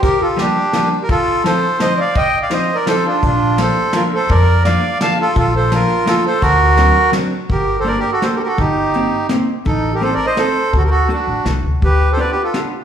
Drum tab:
RD |x-x-x-|x-x-x-|x-x-x-|x-x-x-|
HH |------|------|------|------|
SD |--o-o-|--o-o-|--o-o-|--o-o-|
BD |o-----|o-----|o-----|o-----|

RD |x-x-x-|x-x-x-|x-x-x-|------|
HH |------|------|------|x-x-x-|
SD |--o-o-|--o-o-|--o-o-|----o-|
BD |o-----|o-----|o-----|o-----|

RD |------|------|------|------|
HH |x-x-x-|x-x-x-|x-x-x-|x-x-x-|
SD |----o-|----o-|----o-|----o-|
BD |o-----|o-----|o-----|o-----|